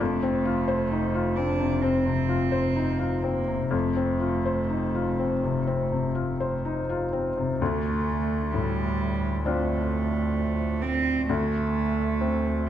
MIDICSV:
0, 0, Header, 1, 4, 480
1, 0, Start_track
1, 0, Time_signature, 4, 2, 24, 8
1, 0, Tempo, 925926
1, 1440, Tempo, 964630
1, 3840, Tempo, 920245
1, 6496, End_track
2, 0, Start_track
2, 0, Title_t, "Felt piano"
2, 0, Program_c, 0, 0
2, 0, Control_c, 0, 64, 127
2, 3, Note_on_c, 0, 41, 72
2, 8, Control_c, 0, 64, 0
2, 92, Control_c, 0, 64, 127
2, 118, Note_on_c, 0, 60, 56
2, 235, Note_on_c, 0, 65, 62
2, 308, Note_off_c, 0, 60, 0
2, 351, Note_on_c, 0, 72, 59
2, 427, Note_off_c, 0, 65, 0
2, 475, Note_on_c, 0, 63, 57
2, 545, Note_off_c, 0, 72, 0
2, 592, Note_on_c, 0, 65, 63
2, 668, Note_off_c, 0, 63, 0
2, 711, Note_on_c, 0, 60, 49
2, 788, Note_off_c, 0, 65, 0
2, 828, Note_on_c, 0, 48, 47
2, 908, Note_off_c, 0, 60, 0
2, 939, Note_off_c, 0, 41, 0
2, 950, Note_on_c, 0, 60, 54
2, 1026, Note_off_c, 0, 48, 0
2, 1069, Note_on_c, 0, 48, 54
2, 1147, Note_off_c, 0, 60, 0
2, 1186, Note_on_c, 0, 65, 57
2, 1265, Note_off_c, 0, 48, 0
2, 1306, Note_on_c, 0, 72, 59
2, 1384, Note_off_c, 0, 65, 0
2, 1429, Note_on_c, 0, 63, 56
2, 1503, Note_off_c, 0, 72, 0
2, 1545, Note_on_c, 0, 65, 56
2, 1622, Note_off_c, 0, 63, 0
2, 1668, Note_on_c, 0, 60, 49
2, 1741, Note_off_c, 0, 65, 0
2, 1788, Note_on_c, 0, 48, 47
2, 1863, Note_off_c, 0, 60, 0
2, 1903, Note_on_c, 0, 41, 65
2, 1924, Control_c, 0, 64, 0
2, 1984, Note_off_c, 0, 48, 0
2, 2001, Control_c, 0, 64, 127
2, 2031, Note_on_c, 0, 60, 50
2, 2148, Note_on_c, 0, 65, 50
2, 2227, Note_off_c, 0, 60, 0
2, 2274, Note_on_c, 0, 72, 54
2, 2346, Note_off_c, 0, 65, 0
2, 2396, Note_on_c, 0, 63, 46
2, 2470, Note_off_c, 0, 72, 0
2, 2519, Note_on_c, 0, 65, 53
2, 2590, Note_off_c, 0, 63, 0
2, 2641, Note_on_c, 0, 60, 46
2, 2712, Note_off_c, 0, 65, 0
2, 2764, Note_on_c, 0, 48, 49
2, 2833, Note_off_c, 0, 60, 0
2, 2855, Note_off_c, 0, 41, 0
2, 2880, Note_on_c, 0, 60, 49
2, 2955, Note_off_c, 0, 48, 0
2, 3003, Note_on_c, 0, 48, 45
2, 3074, Note_off_c, 0, 60, 0
2, 3117, Note_on_c, 0, 65, 51
2, 3196, Note_off_c, 0, 48, 0
2, 3244, Note_on_c, 0, 72, 51
2, 3313, Note_off_c, 0, 65, 0
2, 3367, Note_on_c, 0, 63, 53
2, 3435, Note_off_c, 0, 72, 0
2, 3489, Note_on_c, 0, 65, 54
2, 3557, Note_off_c, 0, 63, 0
2, 3604, Note_on_c, 0, 60, 45
2, 3678, Note_off_c, 0, 65, 0
2, 3728, Note_on_c, 0, 48, 43
2, 3793, Note_off_c, 0, 60, 0
2, 3842, Note_off_c, 0, 48, 0
2, 3848, Note_on_c, 0, 38, 68
2, 3850, Control_c, 0, 64, 0
2, 3937, Control_c, 0, 64, 127
2, 4328, Note_on_c, 0, 45, 50
2, 4808, Note_on_c, 0, 62, 53
2, 4809, Note_on_c, 0, 60, 51
2, 4809, Note_on_c, 0, 65, 62
2, 5092, Note_off_c, 0, 45, 0
2, 5743, Note_off_c, 0, 60, 0
2, 5743, Note_off_c, 0, 62, 0
2, 5744, Note_off_c, 0, 65, 0
2, 5745, Note_off_c, 0, 38, 0
2, 5765, Note_on_c, 0, 38, 62
2, 5770, Control_c, 0, 64, 0
2, 5866, Control_c, 0, 64, 127
2, 6244, Note_on_c, 0, 60, 50
2, 6496, Note_off_c, 0, 38, 0
2, 6496, Note_off_c, 0, 60, 0
2, 6496, End_track
3, 0, Start_track
3, 0, Title_t, "Cello"
3, 0, Program_c, 1, 42
3, 0, Note_on_c, 1, 57, 96
3, 704, Note_on_c, 1, 62, 95
3, 712, Note_off_c, 1, 57, 0
3, 943, Note_on_c, 1, 60, 89
3, 951, Note_off_c, 1, 62, 0
3, 1665, Note_on_c, 1, 58, 85
3, 1672, Note_off_c, 1, 60, 0
3, 1904, Note_off_c, 1, 58, 0
3, 1907, Note_on_c, 1, 57, 83
3, 3339, Note_off_c, 1, 57, 0
3, 3832, Note_on_c, 1, 57, 91
3, 4314, Note_on_c, 1, 55, 98
3, 4321, Note_off_c, 1, 57, 0
3, 4797, Note_off_c, 1, 55, 0
3, 4800, Note_on_c, 1, 57, 98
3, 5517, Note_on_c, 1, 60, 98
3, 5525, Note_off_c, 1, 57, 0
3, 5754, Note_off_c, 1, 60, 0
3, 5757, Note_on_c, 1, 57, 106
3, 6490, Note_off_c, 1, 57, 0
3, 6496, End_track
4, 0, Start_track
4, 0, Title_t, "Double bass"
4, 0, Program_c, 2, 43
4, 0, Note_on_c, 2, 29, 79
4, 1905, Note_off_c, 2, 29, 0
4, 1908, Note_on_c, 2, 29, 67
4, 3816, Note_off_c, 2, 29, 0
4, 3838, Note_on_c, 2, 38, 79
4, 5740, Note_off_c, 2, 38, 0
4, 5762, Note_on_c, 2, 38, 71
4, 6496, Note_off_c, 2, 38, 0
4, 6496, End_track
0, 0, End_of_file